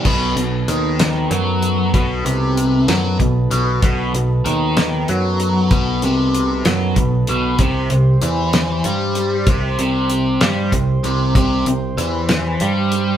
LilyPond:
<<
  \new Staff \with { instrumentName = "Transistor combo organ" } { \time 6/8 \tempo 4. = 64 <fis b dis' a' b'>2.~ | <fis b dis' a' b'>2.~ | <fis b dis' a' b'>2.~ | <fis b dis' a' b'>2. |
<c' g' c''>2.~ | <c' g' c''>2.~ | <c' g' c''>2. | }
  \new Staff \with { instrumentName = "Overdriven electric guitar" } { \clef bass \time 6/8 b,8 b,8 dis4 fis4 | b,8 c4 fis8 b,8 b,8 | b,8 b,8 dis4 fis4 | b,8 c4 fis8 b,8 b,8 |
c8 c8 e4 g4 | c8 c4 g8 c8 c8 | c8 c8 e4 g4 | }
  \new Staff \with { instrumentName = "Picked electric bass" } { \clef bass \time 6/8 b,,8 b,,8 dis,4 fis,4 | b,,8 c,4 fis,8 b,,8 b,,8 | b,,8 b,,8 dis,4 fis,4 | b,,8 c,4 fis,8 b,,8 b,,8 |
c,8 c,8 e,4 g,4 | c,8 c,4 g,8 c,8 c,8 | c,8 c,8 e,4 g,4 | }
  \new DrumStaff \with { instrumentName = "Drums" } \drummode { \time 6/8 <cymc bd>8 hh8 hh8 <hh sn>8 hh8 hh8 | <hh bd>8 hh8 hh8 <hh sn>8 <hh bd>8 hh8 | <hh bd>8 hh8 hh8 <hh sn>8 hh8 hh8 | <hh bd>8 hh8 hh8 <hh sn>8 <hh bd>8 hh8 |
<hh bd>8 hh8 hh8 <hh sn>8 hh8 hh8 | <hh bd>8 hh8 hh8 <hh sn>8 <hh bd>8 hh8 | <hh bd>8 hh8 hh8 <hh sn>8 hh8 hh8 | }
>>